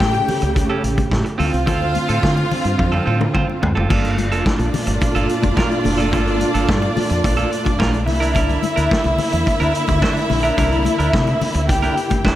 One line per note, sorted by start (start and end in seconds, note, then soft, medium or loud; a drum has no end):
0.00 0.20 A2 loud
0.00 1.38 C#3 medium
0.00 1.38 A3 medium
0.00 1.08 G4 loud
0.00 1.35 G4 medium
0.00 1.09 G5 loud
0.00 kick loud
0.00 snare loud
0.13 muted clean electric guitar stroke medium
0.13 closed hi-hat soft
0.13 muted conga soft
0.28 open hi-hat medium
0.28 low conga medium
0.42 0.62 C#2 loud
0.42 muted clean electric guitar stroke soft
0.42 closed hi-hat medium
0.55 muted clean electric guitar stroke soft
0.55 kick loud
0.55 closed hi-hat medium
0.55 muted conga soft
0.70 0.82 C#4 medium
0.70 0.83 G4 medium
0.70 0.83 A4 medium
0.84 1.03 A1 medium
0.84 muted clean electric guitar stroke soft
0.84 closed hi-hat medium
0.98 muted clean electric guitar stroke soft
0.98 kick medium
0.98 closed hi-hat medium
0.98 high conga medium
1.11 1.21 A2 loud
1.11 kick loud
1.11 snare loud
1.25 muted clean electric guitar stroke medium
1.25 closed hi-hat soft
1.38 1.49 D2 medium
1.38 3.88 D3 medium
1.38 1.56 C4 medium
1.38 3.88 C4 medium
1.38 1.53 F4 medium
1.38 3.58 F4 loud
1.38 3.88 F4 medium
1.38 1.52 A4 medium
1.38 3.59 F5 loud
1.38 snare soft
1.38 open hi-hat medium
1.38 high conga medium
1.38 low conga medium
1.53 1.67 C2 medium
1.53 muted clean electric guitar stroke medium
1.53 closed hi-hat medium
1.66 1.96 D2 loud
1.66 1.92 C4 medium
1.66 1.93 F4 medium
1.66 1.93 A4 medium
1.66 kick loud
1.66 closed hi-hat medium
1.66 muted conga soft
1.66 low conga medium
1.82 muted conga soft
1.95 muted clean electric guitar stroke soft
1.95 closed hi-hat medium
1.95 high conga medium
2.09 2.19 A2 medium
2.09 2.21 C4 medium
2.09 2.22 F4 medium
2.09 2.22 A4 medium
2.09 closed hi-hat soft
2.23 2.42 D3 loud
2.23 muted clean electric guitar stroke soft
2.23 kick loud
2.23 snare loud
2.23 muted conga soft
2.36 muted clean electric guitar stroke soft
2.36 closed hi-hat soft
2.36 muted conga soft
2.51 open hi-hat medium
2.51 low conga loud
2.64 2.75 G2 medium
2.64 muted clean electric guitar stroke soft
2.64 closed hi-hat soft
2.78 2.99 F2 medium
2.78 muted clean electric guitar stroke soft
2.78 kick loud
2.78 high tom medium
2.78 muted conga soft
2.92 3.04 C4 medium
2.92 3.05 F4 medium
2.92 3.06 A4 medium
2.92 high tom medium
2.92 muted conga soft
3.05 3.26 A2 medium
3.05 3.23 C4 medium
3.05 3.20 F4 medium
3.05 3.19 A4 medium
3.20 muted clean electric guitar stroke medium
3.20 mid tom medium
3.20 high conga medium
3.34 3.44 D3 loud
3.34 3.51 C4 medium
3.34 3.47 F4 medium
3.34 3.47 C5 loud
3.34 kick loud
3.34 mid tom medium
3.34 muted conga soft
3.48 muted clean electric guitar stroke medium
3.48 muted conga soft
3.61 3.73 D2 loud
3.61 muted clean electric guitar stroke soft
3.61 floor tom loud
3.61 high conga medium
3.61 low conga medium
3.75 3.86 F1 loud
3.75 3.89 C4 medium
3.75 3.89 F4 medium
3.75 3.89 A4 medium
3.75 floor tom medium
3.89 4.32 G1 loud
3.89 8.04 A#2 medium
3.89 8.04 A3 medium
3.89 4.15 A#3 medium
3.89 8.04 D4 medium
3.89 4.16 F4 medium
3.89 8.04 F4 loud
3.89 4.16 A4 medium
3.89 8.04 D5 loud
3.89 kick loud
3.89 crash loud
3.89 muted conga soft
3.89 low conga medium
4.05 closed hi-hat soft
4.05 muted conga soft
4.17 muted clean electric guitar stroke soft
4.17 closed hi-hat medium
4.17 high conga medium
4.32 4.41 F1 medium
4.32 4.44 A#3 medium
4.32 4.45 F4 medium
4.32 4.45 A4 medium
4.32 closed hi-hat medium
4.45 muted clean electric guitar stroke soft
4.45 kick loud
4.45 snare loud
4.45 muted conga soft
4.59 4.69 A#1 medium
4.59 muted clean electric guitar stroke soft
4.59 closed hi-hat soft
4.74 open hi-hat medium
4.74 high conga medium
4.74 low conga loud
4.87 4.97 G1 medium
4.87 muted clean electric guitar stroke medium
4.87 closed hi-hat medium
5.01 muted clean electric guitar stroke soft
5.01 kick loud
5.01 closed hi-hat medium
5.01 muted conga soft
5.15 5.25 G1 medium
5.15 5.28 A#3 medium
5.15 5.28 F4 medium
5.15 5.29 A4 medium
5.15 closed hi-hat soft
5.15 muted conga soft
5.29 muted clean electric guitar stroke soft
5.29 closed hi-hat medium
5.43 5.53 F1 medium
5.43 muted clean electric guitar stroke medium
5.43 kick loud
5.43 closed hi-hat medium
5.43 high conga medium
5.57 5.74 A#3 medium
5.57 5.70 F4 loud
5.57 5.70 A#4 loud
5.57 kick loud
5.57 snare loud
5.57 muted conga soft
5.70 muted clean electric guitar stroke soft
5.70 closed hi-hat soft
5.84 6.13 F1 loud
5.84 muted clean electric guitar stroke soft
5.84 snare soft
5.84 open hi-hat medium
5.84 high conga medium
5.84 low conga medium
5.98 6.10 A#3 medium
5.98 6.12 F4 medium
5.98 6.12 A4 medium
5.98 closed hi-hat medium
6.11 6.42 G1 medium
6.11 6.38 A#3 medium
6.11 6.39 F4 medium
6.11 6.39 A4 medium
6.11 kick loud
6.11 closed hi-hat medium
6.11 low conga medium
6.27 closed hi-hat soft
6.40 muted clean electric guitar stroke soft
6.40 closed hi-hat medium
6.40 high conga medium
6.54 6.64 G1 medium
6.54 6.67 A#3 medium
6.54 6.68 F4 medium
6.54 6.68 A4 medium
6.54 closed hi-hat medium
6.68 6.88 G2 loud
6.68 muted clean electric guitar stroke soft
6.68 kick loud
6.68 snare loud
6.68 muted conga soft
6.82 muted clean electric guitar stroke soft
6.82 closed hi-hat soft
6.82 muted conga soft
6.97 open hi-hat medium
6.97 high conga medium
6.97 low conga medium
7.10 7.20 F2 medium
7.10 muted clean electric guitar stroke soft
7.10 closed hi-hat medium
7.24 7.44 A#1 medium
7.24 muted clean electric guitar stroke soft
7.24 kick loud
7.24 closed hi-hat medium
7.37 7.50 A#3 medium
7.37 7.51 F4 medium
7.37 7.51 A4 medium
7.37 closed hi-hat soft
7.37 muted conga soft
7.51 muted clean electric guitar stroke soft
7.51 closed hi-hat medium
7.65 muted clean electric guitar stroke medium
7.65 kick medium
7.65 closed hi-hat medium
7.65 high conga medium
7.79 8.08 A#1 loud
7.79 7.97 A#3 medium
7.79 7.92 F4 loud
7.79 7.92 A#4 medium
7.79 kick loud
7.79 snare loud
7.92 muted clean electric guitar stroke soft
7.92 closed hi-hat soft
7.92 muted conga soft
8.06 8.56 C2 loud
8.06 12.35 D3 medium
8.06 12.35 A#3 medium
8.06 12.35 E4 medium
8.06 11.65 E4 loud
8.06 11.65 E5 loud
8.06 muted clean electric guitar stroke soft
8.06 snare soft
8.06 open hi-hat medium
8.06 high conga medium
8.06 low conga medium
8.20 8.32 D4 medium
8.20 8.33 E4 medium
8.20 8.34 A#4 medium
8.20 closed hi-hat medium
8.34 8.60 D4 loud
8.34 8.61 E4 medium
8.34 8.61 A#4 medium
8.34 kick loud
8.34 closed hi-hat medium
8.34 low conga medium
8.50 closed hi-hat soft
8.50 muted conga soft
8.63 muted clean electric guitar stroke soft
8.63 closed hi-hat medium
8.63 high conga medium
8.76 8.87 D2 medium
8.76 8.90 D4 medium
8.76 8.91 E4 medium
8.76 8.90 A#4 medium
8.76 closed hi-hat soft
8.91 muted clean electric guitar stroke soft
8.91 kick loud
8.91 snare loud
8.91 muted conga soft
9.04 9.15 C2 medium
9.04 muted clean electric guitar stroke soft
9.04 closed hi-hat soft
9.04 muted conga soft
9.18 open hi-hat medium
9.18 high conga medium
9.18 low conga medium
9.32 9.43 E2 medium
9.32 muted clean electric guitar stroke soft
9.32 closed hi-hat medium
9.46 muted clean electric guitar stroke soft
9.46 kick loud
9.46 closed hi-hat medium
9.46 muted conga soft
9.60 9.71 D2 loud
9.60 9.73 D4 medium
9.60 9.74 E4 medium
9.60 9.74 A#4 medium
9.60 closed hi-hat soft
9.60 muted conga soft
9.74 muted clean electric guitar stroke soft
9.74 closed hi-hat medium
9.88 9.98 D2 loud
9.88 muted clean electric guitar stroke medium
9.88 kick medium
9.88 closed hi-hat medium
9.88 high conga medium
10.02 10.19 D4 medium
10.02 10.15 E4 medium
10.02 10.15 C5 loud
10.02 kick loud
10.02 snare loud
10.15 muted clean electric guitar stroke medium
10.15 closed hi-hat soft
10.29 10.50 A#1 medium
10.29 muted clean electric guitar stroke soft
10.29 snare soft
10.29 open hi-hat medium
10.29 high conga medium
10.29 low conga medium
10.43 10.55 D4 medium
10.43 10.56 E4 medium
10.43 10.57 A#4 medium
10.43 closed hi-hat medium
10.57 10.87 C2 loud
10.57 10.83 D4 medium
10.57 10.83 E4 medium
10.57 10.84 A#4 medium
10.57 kick loud
10.57 closed hi-hat medium
10.57 muted conga soft
10.57 low conga medium
10.72 closed hi-hat soft
10.85 muted clean electric guitar stroke medium
10.85 closed hi-hat medium
10.85 high conga medium
10.99 11.09 D2 medium
10.99 11.12 D4 medium
10.99 11.13 E4 medium
10.99 11.13 A#4 medium
10.99 closed hi-hat medium
11.13 11.33 C3 loud
11.13 muted clean electric guitar stroke soft
11.13 kick loud
11.13 snare loud
11.13 muted conga soft
11.27 muted clean electric guitar stroke soft
11.27 closed hi-hat soft
11.27 muted conga soft
11.41 open hi-hat medium
11.41 high conga medium
11.41 low conga medium
11.54 11.69 D2 medium
11.54 muted clean electric guitar stroke soft
11.54 closed hi-hat medium
11.69 11.89 C2 loud
11.69 12.35 G4 medium
11.69 12.35 G5 medium
11.69 muted clean electric guitar stroke medium
11.69 kick loud
11.69 closed hi-hat medium
11.69 muted conga soft
11.82 11.95 D4 medium
11.82 11.96 E4 medium
11.82 11.96 A#4 medium
11.82 closed hi-hat soft
11.82 muted conga soft
11.97 muted clean electric guitar stroke soft
11.97 closed hi-hat medium
12.10 muted clean electric guitar stroke soft
12.10 kick medium
12.10 closed hi-hat medium
12.10 high conga medium
12.25 12.35 E1 medium
12.25 12.35 D4 medium
12.25 12.35 E4 medium
12.25 12.35 C5 medium
12.25 kick loud
12.25 snare loud
12.25 muted conga soft